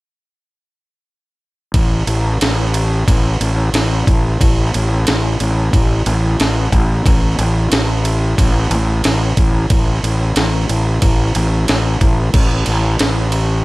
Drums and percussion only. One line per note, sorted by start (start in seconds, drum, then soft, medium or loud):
1.74 kick loud
1.74 ride medium
2.07 ride medium
2.41 snare loud
2.41 ride loud
2.74 ride medium
3.08 kick medium
3.08 ride loud
3.41 ride medium
3.74 snare loud
3.74 ride loud
4.07 kick medium
4.07 ride medium
4.41 kick loud
4.41 ride loud
4.74 ride medium
5.07 snare loud
5.07 ride medium
5.40 ride medium
5.73 kick medium
5.73 ride medium
6.06 ride medium
6.40 snare loud
6.40 ride medium
6.72 kick medium
6.72 ride medium
7.06 kick loud
7.06 ride medium
7.39 ride medium
7.72 snare loud
7.72 ride loud
8.05 ride medium
8.38 kick medium
8.38 ride loud
8.71 ride medium
9.04 snare loud
9.04 ride medium
9.37 kick medium
9.37 ride medium
9.70 kick loud
9.70 ride loud
10.04 ride medium
10.36 snare loud
10.36 ride loud
10.69 ride medium
11.02 kick medium
11.02 ride medium
11.35 ride medium
11.68 snare loud
11.68 ride medium
12.01 kick medium
12.01 ride medium
12.34 kick loud
12.34 crash loud
12.66 ride medium
12.99 snare loud
12.99 ride loud
13.32 ride medium